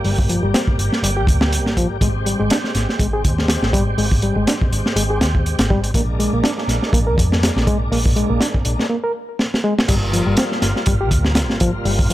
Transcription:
Already playing: tonewheel organ G3 A#3 G4
0.04 picked electric bass G1, reed electric piano G3, open hi-hat
0.19 kick
0.29 reed electric piano F3, closed hi-hat
0.43 picked electric bass G1, reed electric piano G3
0.54 reed electric piano C4, snare, closed hi-hat
0.67 kick
0.78 picked electric bass G1, closed hi-hat
0.92 snare
1.03 picked electric bass G1, reed electric piano G3, closed hi-hat
1.17 reed electric piano G4
1.27 picked electric bass D2, kick, closed hi-hat
1.41 snare
1.52 closed hi-hat
1.66 picked electric bass G1, snare
1.77 reed electric piano F3, kick, closed hi-hat
2.01 picked electric bass G#1, reed electric piano G#3, tonewheel organ G#3 C4, kick, closed hi-hat
2.26 reed electric piano G3, closed hi-hat
2.40 picked electric bass G#1, reed electric piano G#3
2.50 reed electric piano D4, snare, closed hi-hat
2.64 snare
2.75 picked electric bass G#1, snare, closed hi-hat
2.89 snare
2.99 picked electric bass G#1, reed electric piano G#3, kick, closed hi-hat
3.13 reed electric piano G#4
3.24 picked electric bass D#2, kick, closed hi-hat
3.38 snare
3.48 snare, closed hi-hat
3.62 picked electric bass G#1, snare
3.73 reed electric piano G3, kick, closed hi-hat
3.98 picked electric bass G#1, reed electric piano G#3, open hi-hat
4.12 kick
4.22 reed electric piano G3, closed hi-hat
4.36 picked electric bass G#1, reed electric piano G#3
4.47 reed electric piano D4, snare, closed hi-hat
4.61 kick
4.71 picked electric bass G#1, closed hi-hat
4.86 snare
4.96 picked electric bass G#1, reed electric piano G#3, closed hi-hat
5.10 reed electric piano G#4
5.20 picked electric bass D#2, snare, closed hi-hat
5.35 kick
5.46 closed hi-hat
5.59 picked electric bass G#1, snare, closed hi-hat
5.70 reed electric piano G3, kick
5.84 closed hi-hat
5.94 picked electric bass A#1, tonewheel organ G#3 A#3 D4, reed electric piano A#3, kick, closed hi-hat
6.19 reed electric piano G#3, closed hi-hat
6.33 picked electric bass A#1, reed electric piano A#3
6.44 reed electric piano D4, snare, closed hi-hat
6.58 snare
6.68 picked electric bass A#1, snare, closed hi-hat
6.83 snare
6.93 picked electric bass A#1, reed electric piano A#3, kick, closed hi-hat
7.07 reed electric piano A#4
7.17 picked electric bass F2, kick, closed hi-hat
7.32 snare
7.43 snare, closed hi-hat
7.56 picked electric bass A#1, snare
7.67 reed electric piano G#3, kick, closed hi-hat
7.91 picked electric bass A#1, reed electric piano A#3, open hi-hat
8.06 kick
8.16 reed electric piano G#3, closed hi-hat
8.30 picked electric bass A#1, reed electric piano A#3
8.41 reed electric piano D4, snare, closed hi-hat
8.54 kick
8.65 picked electric bass A#1, closed hi-hat
8.79 snare
8.90 reed electric piano A#3
9.04 reed electric piano A#4
9.39 snare
9.54 snare
9.64 reed electric piano G#3
9.79 snare
9.88 picked electric bass G1, tonewheel organ G3 A#3 F4, reed electric piano G3, kick, closed hi-hat, crash
10.13 reed electric piano F3, closed hi-hat
10.27 picked electric bass G1, reed electric piano G3
10.37 reed electric piano C4, snare, closed hi-hat
10.52 snare
10.62 picked electric bass G1, snare, closed hi-hat
10.76 snare
10.86 picked electric bass G1, reed electric piano G3, kick, closed hi-hat
11.01 reed electric piano G4
11.11 picked electric bass D2, kick, closed hi-hat
11.25 snare
11.35 snare, closed hi-hat
11.50 picked electric bass G1, snare
11.60 reed electric piano F3, kick, closed hi-hat
11.85 picked electric bass G1, reed electric piano G3, open hi-hat
11.99 kick
12.10 reed electric piano F3, closed hi-hat

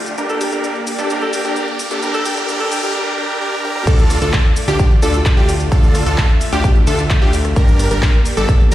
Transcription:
Already playing: analog synth bass D2, supersaw synth A3 F4 D5, riser
0.06 closed hi-hat, shaker
0.18 analog synth bass G1, supersaw synth A#3 D4 G4 A#4 D5, closed hi-hat, shaker
0.29 alto saxophone A4, closed hi-hat, shaker
0.41 alto saxophone G4, open hi-hat, shaker
0.52 analog synth bass G1, supersaw synth D4 G4 A#4, alto saxophone G4, closed hi-hat, shaker
0.64 closed hi-hat, shaker
0.76 closed hi-hat
0.87 open hi-hat, shaker
0.99 analog synth bass G1, supersaw synth D4 G4 A4, closed hi-hat, shaker
1.10 analog synth bass G1, supersaw synth D4 G4 A#4, closed hi-hat, shaker
1.22 alto saxophone A4, closed hi-hat
1.33 alto saxophone G4, open hi-hat, shaker
1.45 analog synth bass G1, supersaw synth D4 G4 A#4, alto saxophone G4, closed hi-hat, shaker
1.56 closed hi-hat, shaker
1.68 closed hi-hat
1.79 open hi-hat, shaker
1.91 analog synth bass G1, supersaw synth D4 G4 A4, closed hi-hat, shaker
2.02 analog synth bass G1, supersaw synth D4 G4 A#4, closed hi-hat, noise sweep, shaker
2.14 alto saxophone A4, closed hi-hat, shaker
2.26 alto saxophone G4, open hi-hat, shaker
2.37 analog synth bass G1, supersaw synth D4 G4 A#4, alto saxophone G4, shaker
2.49 analog synth bass G1, supersaw synth D4 G4 A#4, closed hi-hat, shaker
2.60 alto saxophone A4, closed hi-hat
2.72 alto saxophone G4, open hi-hat, shaker
2.83 analog synth bass G1, supersaw synth D4 G4 A#4, alto saxophone G4, closed hi-hat, shaker
2.95 supersaw synth D4 G4 A#4
3.18 supersaw synth D4 G4 A#4
3.41 supersaw synth D4 G4 A#4
3.64 supersaw synth D4 G4 A#4, high tom
3.76 mid tom
3.87 analog synth bass D2, supersaw synth A3 D4 F4 A4 D5, digital synth lead A4, kick, closed hi-hat, crash, shaker
3.99 closed hi-hat, shaker
4.10 cross-stick, open hi-hat, shaker
4.22 analog synth bass D2, supersaw synth D4 F4 A4, digital synth lead A4, closed hi-hat, shaker
4.33 kick, clap, closed hi-hat, shaker
4.45 closed hi-hat
4.56 open hi-hat, shaker
4.68 analog synth bass D2, supersaw synth D4 F4 G4, digital synth lead G4, closed hi-hat, shaker
4.79 kick, closed hi-hat, shaker
4.91 closed hi-hat
5.02 analog synth bass D2, supersaw synth D4 F4 A4, digital synth lead A4, open hi-hat, shaker
5.14 closed hi-hat, shaker
5.26 kick, clap, closed hi-hat, shaker
5.37 analog synth bass D2, supersaw synth D4 F4 G4, digital synth lead G4, closed hi-hat
5.49 open hi-hat, shaker
5.60 closed hi-hat, shaker
5.72 analog synth bass D2, supersaw synth D4 F4 A4 E5, digital synth lead A4, kick, closed hi-hat, shaker
5.83 closed hi-hat, shaker
5.95 cross-stick, open hi-hat, shaker
6.06 analog synth bass D2, supersaw synth D4 F4 A4, digital synth lead A4, closed hi-hat, shaker
6.18 kick, clap, closed hi-hat, shaker
6.29 closed hi-hat
6.41 open hi-hat, shaker
6.52 analog synth bass D2, supersaw synth D4 F4 G4, digital synth lead G4, closed hi-hat, shaker
6.64 kick, closed hi-hat, shaker
6.76 closed hi-hat
6.87 analog synth bass D2, supersaw synth D4 F4 A4, digital synth lead A4, open hi-hat, shaker
6.99 closed hi-hat, shaker
7.10 kick, clap, closed hi-hat, shaker
7.22 analog synth bass D2, supersaw synth D4 F4 G4, digital synth lead G4, closed hi-hat
7.33 open hi-hat, shaker
7.45 cross-stick, closed hi-hat, shaker
7.56 analog synth bass G1, supersaw synth A#3 D4 G4 A#4 D5, digital synth lead A#4, kick, closed hi-hat, shaker
7.68 closed hi-hat, shaker
7.79 cross-stick, open hi-hat, shaker
7.91 analog synth bass G1, supersaw synth D4 G4 A#4, digital synth lead A#4, closed hi-hat, shaker
8.03 kick, clap, closed hi-hat, shaker
8.14 closed hi-hat
8.26 open hi-hat, shaker
8.37 analog synth bass G1, supersaw synth D4 G4 A4, digital synth lead A4, closed hi-hat, shaker
8.49 kick, closed hi-hat, shaker
8.60 closed hi-hat

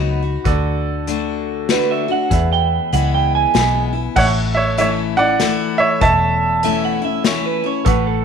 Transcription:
Already playing: fingered electric bass C#2, steel-string acoustic guitar F#3 B3 D#4 F#4, grand piano F#4 B4 B5
0.22 steel-string acoustic guitar D#4 F#4
0.44 fingered electric bass D2, steel-string acoustic guitar D3, grand piano F#4 A4 D5, kick, closed hi-hat
1.07 steel-string acoustic guitar D3 A3 D4 F#4, closed hi-hat
1.69 steel-string acoustic guitar D3 A3 D4 F#4, clean electric guitar B4, snare, closed hi-hat
1.91 clean electric guitar E5
2.08 steel-string acoustic guitar D4 F#4, clean electric guitar F#5
2.30 fingered electric bass E2, steel-string acoustic guitar E2, grand piano G#4 B4 E5, kick, closed hi-hat
2.53 clean electric guitar G5
2.92 fingered electric bass C#2, steel-string acoustic guitar E3 G#3 B3 E4, clean electric guitar F#5, closed hi-hat
3.15 clean electric guitar G5
3.35 clean electric guitar G#5
3.54 fingered electric bass B1, steel-string acoustic guitar E3 G#3 B3 E4, snare, closed hi-hat
3.93 steel-string acoustic guitar B3 E4
4.16 fingered electric bass A1, steel-string acoustic guitar A2, grand piano A4 E5 C#6, upright piano C#5 F#5, kick, crash
4.55 upright piano C#5 E5
4.78 steel-string acoustic guitar E3 A3 C#4 E4, upright piano C#5 E5, closed hi-hat
5.17 steel-string acoustic guitar C#4 E4, upright piano D5 F#5
5.40 steel-string acoustic guitar E3 A3 E4, snare, closed hi-hat
5.78 upright piano C#5 E5
6.01 fingered electric bass E1, steel-string acoustic guitar E2, grand piano A4 C#5 E5, upright piano E5 A5, kick, closed hi-hat
6.63 steel-string acoustic guitar E3 A3 C#4 E4, clean electric guitar E5, closed hi-hat
6.85 clean electric guitar F#5
7.02 steel-string acoustic guitar C#4 E4, clean electric guitar E5
7.24 steel-string acoustic guitar E3 A3 C#4 E4, clean electric guitar C#5, snare, closed hi-hat
7.46 clean electric guitar B4
7.64 steel-string acoustic guitar C#4 E4, clean electric guitar C#5
7.85 fingered electric bass A1, steel-string acoustic guitar A2, grand piano A4 F#5 C#6, clean electric guitar B4, kick, closed hi-hat
8.07 clean electric guitar A4

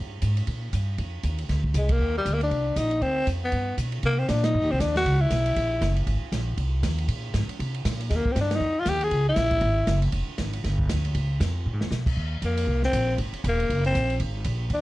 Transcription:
Already playing: upright bass G2
0.22 upright bass G#2, kick, hi-hat pedal, ride
0.37 ride
0.47 upright bass A#2, kick, ride
0.73 upright bass G2, kick, hi-hat pedal, ride
0.98 upright bass F2, kick, ride
1.23 upright bass D#2, kick, hi-hat pedal, ride
1.39 ride
1.49 upright bass D2, kick, snare, ride
1.64 kick
1.74 upright bass C2, tenor saxophone G#3, hi-hat pedal, ride
1.89 tenor saxophone A#3, kick, ride
1.99 upright bass D#2
2.18 tenor saxophone G3
2.25 upright bass D2, kick, hi-hat pedal, ride
2.34 tenor saxophone A#3
2.41 tenor saxophone D4, ride
2.51 upright bass C2, kick, ride
2.76 upright bass A#1, tenor saxophone D#4, kick, hi-hat pedal, ride
2.91 ride
3.01 upright bass D2, tenor saxophone C4, kick, ride
3.27 upright bass F2, kick, hi-hat pedal, ride
3.44 tenor saxophone B3
3.52 upright bass G2, kick, ride
3.78 upright bass B2, kick, hi-hat pedal, ride
3.92 ride
4.03 upright bass C3, tenor saxophone A#3, kick, ride
4.19 tenor saxophone C4
4.29 upright bass A#2, tenor saxophone D4, kick, snare, hi-hat pedal, ride
4.44 tenor saxophone D#4, snare, ride
4.54 upright bass G2
4.63 upright bass D#2
4.71 upright bass C2, tenor saxophone C4
4.80 upright bass D#2, tenor saxophone D4, kick, snare, hi-hat pedal, ride
4.96 tenor saxophone F#4, snare, ride
5.05 upright bass C#2, kick, ride
5.21 tenor saxophone E4
5.31 upright bass B1, kick, snare, hi-hat pedal, ride
5.46 ride
5.56 upright bass A#1, kick, ride
5.81 upright bass F#1, kick, snare, hi-hat pedal, ride
5.96 ride
6.06 upright bass G#1, kick, ride
6.22 muted upright bass stroke
6.32 upright bass A#1, kick, snare, hi-hat pedal, ride
6.57 upright bass C2, kick, ride
6.83 upright bass D#2, kick, snare, hi-hat pedal, ride
6.98 ride
7.08 upright bass A#2, kick, ride
7.34 upright bass G#2, kick, snare, hi-hat pedal, ride
7.48 muted upright bass stroke, ride
7.59 upright bass C3, kick, ride
7.75 ride
7.85 upright bass A#2, kick, snare, hi-hat pedal, ride
8.00 ride
8.10 upright bass D#2, tenor saxophone G#3, kick, snare, ride
8.15 tenor saxophone A#3
8.25 muted upright bass stroke, kick
8.32 upright bass G2, tenor saxophone C4, snare, hi-hat pedal, ride
8.41 tenor saxophone D4
8.51 snare, ride
8.56 tenor saxophone D#4
8.60 upright bass F2
8.80 tenor saxophone F4
8.86 upright bass D#2, tenor saxophone G4, kick, snare, hi-hat pedal, ride
9.01 tenor saxophone G#4, ride
9.11 upright bass C#2, kick, ride
9.29 tenor saxophone E4
9.36 upright bass A#1, kick, snare, hi-hat pedal, ride
9.51 kick, ride
9.61 upright bass G#1, kick, ride
9.87 upright bass F#1, kick, snare, hi-hat pedal, ride
10.02 ride
10.12 upright bass F1, kick, ride
10.27 muted upright bass stroke
10.38 upright bass G#1, kick, snare, hi-hat pedal, ride
10.53 ride
10.64 upright bass G1, kick, snare, ride
10.79 kick
10.89 upright bass D2, kick, snare, hi-hat pedal, ride
11.05 ride
11.15 upright bass C#2, kick, ride
11.40 upright bass F2, kick, snare, hi-hat pedal, ride
11.66 upright bass A#2
11.73 upright bass G#2
11.81 upright bass F2, snare
11.90 upright bass B2, snare, hi-hat pedal
12.06 kick, crash
12.17 upright bass D#2, kick
12.42 upright bass F2, tenor saxophone A#3, kick, hi-hat pedal, ride
12.58 ride
12.67 upright bass C2, kick
12.83 tenor saxophone C4, snare
12.93 upright bass A#1, kick, hi-hat pedal, ride
13.18 upright bass G#1, kick, ride
13.33 muted upright bass stroke, ride
13.44 upright bass E1, kick, hi-hat pedal, ride
13.48 tenor saxophone A#3
13.60 ride
13.69 upright bass F#1, kick, ride
13.84 tenor saxophone C4, ride
13.95 upright bass A#1, kick, hi-hat pedal, ride
14.10 ride
14.20 upright bass G#1, kick, ride
14.44 upright bass A#1, kick, hi-hat pedal, ride
14.70 upright bass D#2, kick, ride
14.74 tenor saxophone D4

